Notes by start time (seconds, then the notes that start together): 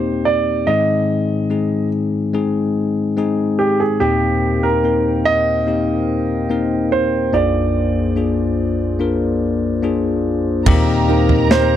Already playing: D#2 A#2 A#3 C4 D#4 G4 C5
0.25 D5
0.67 G#2 D#3 G#3 C4 D#4 G#4 D#5
1.50 G#3 C4 D#4 G#4
2.33 G#3 C4 D#4 G#4
3.17 G#3 C4 D#4 G#4
3.59 G4
3.80 G#4
4.00 D#2 A#2 A#3 C4 D#4 G4 A#4 C5 F5 G5
4.63 A#4
4.83 A#3 C4 D#4 A#4
5.25 D#5
5.66 A#3 C4 D#4 G4
6.50 A#3 C4 D#4 A#4
6.92 C5
7.33 A#1 F2 A#3 D4 F4 G#4 D5
8.16 A#3 D4 F4 G#4
8.99 A#3 D4 F4 A#4
9.83 A#3 D4 F4 G#4
10.66 D#2 A#2 D#3 A#3 C4 D#4 G4 A#4 C5 F5 G5 A#5, kick, floor tom, crash
11.09 D#4 G4 A#4
11.29 floor tom
11.50 A#3 C4 D#4 G4 A#4 C5, snare